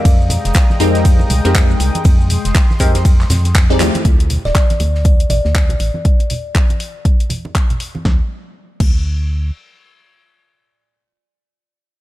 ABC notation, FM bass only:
X:1
M:4/4
L:1/16
Q:"Swing 16ths" 1/4=120
K:F
V:1 name="FM bass" clef=bass
F,,3 F,,, z2 F,,4 C,, F,,3 C,, z | F,,3 F,,, z2 F,,4 F,,4 _E,, z | D,,3 D,,, z2 D,,4 A,,, D,,3 A,,, z | z16 |
D,, z4 z D,,6 z4 | z16 |]